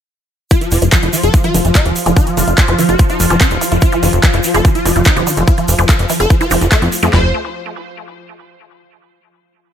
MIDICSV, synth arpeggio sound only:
0, 0, Header, 1, 2, 480
1, 0, Start_track
1, 0, Tempo, 413793
1, 592, Time_signature, 4, 2, 24, 8
1, 11290, End_track
2, 0, Start_track
2, 0, Title_t, "Synth arpeggio sound"
2, 0, Program_c, 0, 84
2, 591, Note_on_c, 0, 53, 84
2, 662, Note_off_c, 0, 53, 0
2, 711, Note_on_c, 0, 65, 76
2, 754, Note_off_c, 0, 65, 0
2, 952, Note_on_c, 0, 53, 104
2, 1021, Note_off_c, 0, 53, 0
2, 1071, Note_on_c, 0, 51, 84
2, 1141, Note_off_c, 0, 51, 0
2, 1311, Note_on_c, 0, 53, 71
2, 1381, Note_off_c, 0, 53, 0
2, 1432, Note_on_c, 0, 65, 76
2, 1474, Note_off_c, 0, 65, 0
2, 1672, Note_on_c, 0, 53, 101
2, 1742, Note_off_c, 0, 53, 0
2, 1792, Note_on_c, 0, 51, 76
2, 1862, Note_off_c, 0, 51, 0
2, 2031, Note_on_c, 0, 53, 82
2, 2101, Note_off_c, 0, 53, 0
2, 2151, Note_on_c, 0, 65, 74
2, 2193, Note_off_c, 0, 65, 0
2, 2391, Note_on_c, 0, 53, 105
2, 2461, Note_off_c, 0, 53, 0
2, 2512, Note_on_c, 0, 51, 85
2, 2582, Note_off_c, 0, 51, 0
2, 2751, Note_on_c, 0, 53, 76
2, 2821, Note_off_c, 0, 53, 0
2, 2872, Note_on_c, 0, 65, 78
2, 2914, Note_off_c, 0, 65, 0
2, 3112, Note_on_c, 0, 53, 100
2, 3182, Note_off_c, 0, 53, 0
2, 3232, Note_on_c, 0, 51, 73
2, 3302, Note_off_c, 0, 51, 0
2, 3472, Note_on_c, 0, 53, 83
2, 3541, Note_off_c, 0, 53, 0
2, 3592, Note_on_c, 0, 65, 77
2, 3634, Note_off_c, 0, 65, 0
2, 3832, Note_on_c, 0, 53, 99
2, 3902, Note_off_c, 0, 53, 0
2, 3952, Note_on_c, 0, 51, 83
2, 4021, Note_off_c, 0, 51, 0
2, 4192, Note_on_c, 0, 53, 79
2, 4262, Note_off_c, 0, 53, 0
2, 4312, Note_on_c, 0, 65, 78
2, 4354, Note_off_c, 0, 65, 0
2, 4552, Note_on_c, 0, 53, 101
2, 4622, Note_off_c, 0, 53, 0
2, 4672, Note_on_c, 0, 51, 76
2, 4742, Note_off_c, 0, 51, 0
2, 4912, Note_on_c, 0, 53, 83
2, 4982, Note_off_c, 0, 53, 0
2, 5031, Note_on_c, 0, 65, 76
2, 5073, Note_off_c, 0, 65, 0
2, 5272, Note_on_c, 0, 53, 103
2, 5342, Note_off_c, 0, 53, 0
2, 5392, Note_on_c, 0, 51, 83
2, 5462, Note_off_c, 0, 51, 0
2, 5632, Note_on_c, 0, 53, 78
2, 5702, Note_off_c, 0, 53, 0
2, 5751, Note_on_c, 0, 65, 78
2, 5794, Note_off_c, 0, 65, 0
2, 5992, Note_on_c, 0, 53, 101
2, 6061, Note_off_c, 0, 53, 0
2, 6112, Note_on_c, 0, 51, 80
2, 6182, Note_off_c, 0, 51, 0
2, 6352, Note_on_c, 0, 53, 83
2, 6422, Note_off_c, 0, 53, 0
2, 6471, Note_on_c, 0, 65, 75
2, 6513, Note_off_c, 0, 65, 0
2, 6712, Note_on_c, 0, 53, 105
2, 6781, Note_off_c, 0, 53, 0
2, 6831, Note_on_c, 0, 51, 85
2, 6901, Note_off_c, 0, 51, 0
2, 7072, Note_on_c, 0, 53, 74
2, 7142, Note_off_c, 0, 53, 0
2, 7192, Note_on_c, 0, 65, 78
2, 7234, Note_off_c, 0, 65, 0
2, 7431, Note_on_c, 0, 53, 100
2, 7501, Note_off_c, 0, 53, 0
2, 7552, Note_on_c, 0, 53, 101
2, 7622, Note_off_c, 0, 53, 0
2, 7791, Note_on_c, 0, 57, 101
2, 7861, Note_off_c, 0, 57, 0
2, 7911, Note_on_c, 0, 60, 77
2, 7981, Note_off_c, 0, 60, 0
2, 8152, Note_on_c, 0, 57, 104
2, 8194, Note_off_c, 0, 57, 0
2, 8272, Note_on_c, 0, 53, 93
2, 8495, Note_off_c, 0, 53, 0
2, 11290, End_track
0, 0, End_of_file